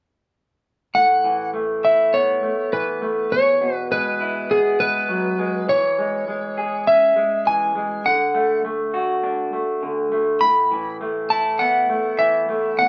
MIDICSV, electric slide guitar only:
0, 0, Header, 1, 2, 480
1, 0, Start_track
1, 0, Key_signature, 3, "major"
1, 0, Tempo, 591424
1, 773, Time_signature, 4, 2, 24, 8
1, 10457, End_track
2, 0, Start_track
2, 0, Title_t, "Electric slide guitar"
2, 0, Program_c, 0, 29
2, 770, Note_on_c, 0, 78, 51
2, 1219, Note_off_c, 0, 78, 0
2, 1498, Note_on_c, 0, 76, 52
2, 1736, Note_on_c, 0, 73, 48
2, 1743, Note_off_c, 0, 76, 0
2, 2182, Note_off_c, 0, 73, 0
2, 2216, Note_on_c, 0, 71, 44
2, 2695, Note_on_c, 0, 73, 48
2, 2709, Note_off_c, 0, 71, 0
2, 3044, Note_off_c, 0, 73, 0
2, 3044, Note_on_c, 0, 71, 48
2, 3142, Note_off_c, 0, 71, 0
2, 3179, Note_on_c, 0, 71, 56
2, 3660, Note_on_c, 0, 68, 46
2, 3671, Note_off_c, 0, 71, 0
2, 3896, Note_on_c, 0, 71, 47
2, 3904, Note_off_c, 0, 68, 0
2, 4617, Note_off_c, 0, 71, 0
2, 4620, Note_on_c, 0, 73, 55
2, 5576, Note_off_c, 0, 73, 0
2, 5579, Note_on_c, 0, 76, 60
2, 6063, Note_on_c, 0, 80, 52
2, 6070, Note_off_c, 0, 76, 0
2, 6539, Note_on_c, 0, 78, 53
2, 6552, Note_off_c, 0, 80, 0
2, 6984, Note_off_c, 0, 78, 0
2, 8447, Note_on_c, 0, 83, 54
2, 8897, Note_off_c, 0, 83, 0
2, 9173, Note_on_c, 0, 81, 68
2, 9408, Note_on_c, 0, 78, 50
2, 9420, Note_off_c, 0, 81, 0
2, 9890, Note_on_c, 0, 76, 51
2, 9905, Note_off_c, 0, 78, 0
2, 10377, Note_on_c, 0, 78, 52
2, 10386, Note_off_c, 0, 76, 0
2, 10457, Note_off_c, 0, 78, 0
2, 10457, End_track
0, 0, End_of_file